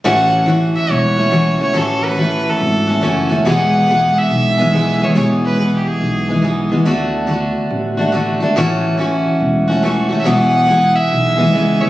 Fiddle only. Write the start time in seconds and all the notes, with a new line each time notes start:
0.04 F#5
0.76 E5
0.91 C#5
1.62 C#5
1.77 A4
2.05 B4
2.49 A4
3.49 F#5
4.17 E5
5.03 C#5
5.16 C#5
5.45 B4
5.76 G4
5.87 G#4
10.20 E5
10.26 F#5
10.95 E5
11.81 C#5